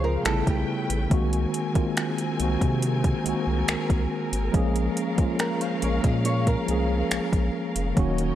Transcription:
Already playing: C#2 C#3 F3 G#3 C4 F4 G#4 C5 F5
0.04 F4 G#4 A#4
0.23 A1 C3 G3 A3 B3 C#4 A4 B4 G5, finger snap, closed hi-hat
0.28 C#3 E4
0.47 B1 G4, kick, closed hi-hat
0.90 A1, closed hi-hat
1.09 C2 D#3 G#3 A#3 C4 G#4 A#4 G#5, kick, closed hi-hat
1.14 F#4
1.33 closed hi-hat
1.54 closed hi-hat
1.73 D#3 G#3 A#3 C4, kick, closed hi-hat
1.78 F4
1.97 finger snap, closed hi-hat
2.18 closed hi-hat
2.38 C2 D#3 G#3 A#3 C4, closed hi-hat
2.42 F#4
2.61 C3, kick, closed hi-hat
2.83 closed hi-hat
3.04 kick, closed hi-hat
3.23 C2 D#3 G#3 A#3 C4, closed hi-hat
3.28 F#4
3.47 C2
3.68 C2, finger snap, closed hi-hat
3.90 C2, kick, closed hi-hat
4.32 G#1, closed hi-hat
4.51 A#1 F3 G#3 A#3 C#4 F5, kick, closed hi-hat
4.56 G#4
4.76 closed hi-hat
4.97 closed hi-hat
5.16 F3 G#3 A#3 C#4, kick, closed hi-hat
5.21 F4
5.39 A#4, finger snap, closed hi-hat
5.61 C5, closed hi-hat
5.80 A#1 F3 G#3 A#3 C#4 C#5, closed hi-hat
5.85 A#4
6.04 A#2 D#5, kick, closed hi-hat
6.25 C#5, closed hi-hat
6.47 A#4, kick, closed hi-hat
6.66 C2 F3 G#3 A#3 C#4, closed hi-hat
6.71 G#4
7.11 A#1, finger snap, closed hi-hat
7.33 A#1, kick, closed hi-hat
7.75 F1, closed hi-hat
7.95 D#1 D#3 F#3 A#3 C#4 D#4 C#5 D#5, kick, closed hi-hat
7.99 F#4
8.18 closed hi-hat

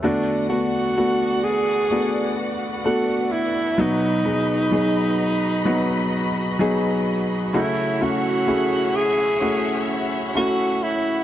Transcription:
0.03 D3 A3 B3 D4 F#4 B4 D5 F#5
0.49 A3 B3 D4 F#4
0.97 A3 B3 D4 F#4
1.44 G#4
1.91 A3 B3 D4 F#4
2.84 A3 B3 D4 F#4 A4
3.32 E4
3.78 B2 F#3 B3 D#4 F#4 D#5 B5
4.25 F#3 B3 D#4 G#4
4.72 F#3 B3 D#4 G#4
5.65 F#3 B3 D#4 F#4
6.59 F#3 B3 D#4 G#4
7.53 C#3 A3 C#4 E4 F#4 C#5 E5 F#5
8.00 A3 C#4 E4 F#4
8.47 A3 C#4 E4 G#4
8.96 G#4
9.41 A3 C#4 E4 F#4
10.35 A3 C#4 E4 F#4
10.83 E4

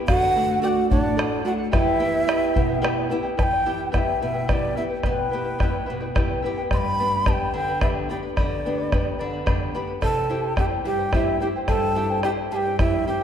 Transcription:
0.07 D3 F#4 A4 D5 F#5, bombo rim, bombo low
0.23 bombo rim
0.35 A3 D4 F#4 A4 D5 F#5
0.49 D5 F#5
0.62 A3 D4 F#4 A4 D5 F#5 G5
0.68 F#5
0.90 A2 D4 A4 D5 F#5, bombo low
1.04 D5 F#5
1.17 A3 D4 F#4 A4 D5 F#5, bombo rim
1.45 A3 D4 F#4 A4 D5 F#5, bombo rim
1.58 D5 F#5
1.71 E3 E4 G4 B4 E5 G5, bombo rim, bombo low
1.99 B3 E4 G4 B4 E5 G5
2.14 E4 B4 G5
2.27 B3 E4 G4 B4 E5 G5, bombo rim
2.54 B2 E4 B4 E5 G5, bombo low
2.68 E4 B4 G5
2.82 B3 E4 G4 B4 E5 G5, bombo rim
2.98 bombo rim
3.10 B3 E4 G4 B4 E5 G5
3.23 E4 B4 G5, bombo rim
3.37 E3 E4 G4 B4 E5 G5 A5, bombo rim, bombo low
3.43 G5
3.53 bombo rim
3.65 B3 E4 G4 B4 E5 G5
3.78 E4 B4 G5
3.92 B3 E4 G4 B4 E5 F#5 G5, bombo rim, bombo low
3.98 E5
4.08 bombo rim
4.20 B2 E4 B4 E5 G5
4.34 E4 B4 G5, bombo rim
4.48 B3 E4 G4 B4 D5 E5 G5, bombo rim, bombo low
4.75 B3 E4 G4 B4 E5 G5
4.89 E4 B4 G5
5.03 B2 E4 G4 B4 C5 E5 G5, bombo rim, bombo low
5.10 B4
5.18 bombo rim
5.30 B3 E4 B4 E5 G5
5.34 G4
5.44 E4 B4 G5
5.59 B3 E4 G4 B4 E5 G5, bombo rim, bombo low
5.63 G4
5.74 bombo rim
5.86 B2 E4 B4 E5 G5
6.00 E4 B4 G5, bombo rim
6.15 B3 E4 G4 B4 E5 G5, bombo rim, bombo low
6.42 B3 E4 G4 B4 E5 G5
6.58 E4 B4 G5
6.71 G2 G4 B4 D5 G5 B5 C6, bombo rim, bombo low
6.77 B5
6.85 bombo rim
6.99 B3 D4 G4 B4 D5 G5 B5
7.12 B4 D5 B5
7.26 B3 D4 G4 B4 D5 G5 A5 B5, bombo rim, bombo low
7.33 G5
7.40 bombo rim
7.54 D3 B4 D5 G5 B5
7.68 B4 D5 B5, bombo rim
7.81 B3 D4 G4 B4 D5 E5 G5 B5, bombo rim, bombo low
8.09 B3 D4 G4 B4 D5 G5 B5
8.23 B4 D5 B5
8.36 D3 G4 B4 D5 G5 B5, bombo rim, bombo low
8.65 B3 D4 G4 B4 D5 G5 B5
8.78 B4 D5 B5
8.92 B3 D4 G4 B4 D5 G5 B5, bombo rim, bombo low
9.19 D3 B4 D5 G5 B5
9.33 B4 D5 B5
9.46 B3 D4 G4 B4 D5 G5 B5, bombo rim, bombo low
9.61 bombo rim
9.74 B3 D4 G4 B4 D5 G5 B5
9.87 B4 D5 B5
10.01 C3 E4 G4 A4 C5 E5 G5 A5, bombo rim, bombo low
10.16 bombo rim
10.29 C4 E4 G4 C5 E5 G5
10.43 E4 C5 G5
10.56 C4 E4 G4 C5 E5 G5, bombo rim, bombo low
10.71 bombo rim
10.84 G2 E4 G4 C5 E5 G5
10.98 E4 C5 G5, bombo rim
11.12 C4 E4 G4 C5 E5 G5, bombo rim, bombo low
11.40 C4 E4 G4 C5 E5 G5
11.56 E4 C5 G5
11.68 G2 E4 G4 A4 C5 E5 G5 A5, bombo rim, bombo low
11.82 bombo rim
11.95 C4 E4 G4 C5 E5 G5
12.10 E4 C5 G5
12.23 C4 E4 G4 C5 E5 G5, bombo rim
12.37 bombo rim
12.52 G2 E4 G4 C5 E5 G5 A5
12.56 G5
12.65 E4 C5 G5, bombo rim
12.79 C4 E4 G4 C5 E5 G5, bombo rim, bombo low
13.06 C4 E4 G4 C5 E5 G5

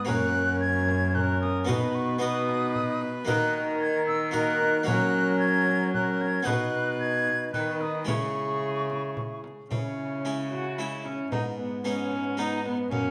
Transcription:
Already playing: G#2
0.05 F#2 A#3 C#4 F#4 A#4 C#5 F#6, frame drum
0.60 G#6
0.89 frame drum
1.14 C#4 A#4 F#6, frame drum
1.41 D#6, frame drum
1.65 B2 B3 D#4 F#4 B4 D#5 B5
1.69 frame drum
1.95 C#6
2.19 B3 D#4 F#4 B4 D#5 D#6
2.49 frame drum
2.76 frame drum
3.02 frame drum
3.25 D#3 A#3 D#4 F#4 A#4 D#5 F#6, frame drum
3.29 D#3
3.81 G#6
4.07 E6, frame drum
4.31 A#3 D#4 F#4 A#4 D#5 F#6, frame drum
4.61 frame drum
4.83 F#3 A#3 F#4 C#5 F#6
4.88 C#4 A#4, frame drum
5.39 G#6
5.67 frame drum
5.94 C#4 A#4 F#6, frame drum
6.21 G#6, frame drum
6.43 B3 D#4 F#4 D#5 F#6
6.47 B2 B4, frame drum
7.00 G#6
7.27 frame drum
7.53 D#3 D#4 B4 F#6, frame drum
7.81 D#6, frame drum
8.05 C#3 G#3 E4 C#5 C#6, frame drum
8.09 G#4
8.90 frame drum
9.17 frame drum
9.44 frame drum
9.71 C#3 C#4 E4 C#5, frame drum
10.25 G#3 C#4 E4
10.52 F#4 F#5, frame drum
10.77 G#3 C#4 E4 E5
11.04 C#4 C#5, frame drum
11.31 G#2 B3 D#4 D#5, frame drum
11.57 B3 B4
11.84 G#3 B3 C#4 D#4 C#5
12.11 frame drum
12.37 G#3 B3 D#4 D#5
12.65 B3 B4, frame drum
12.91 F#2 A#3 C#4 C#5, frame drum

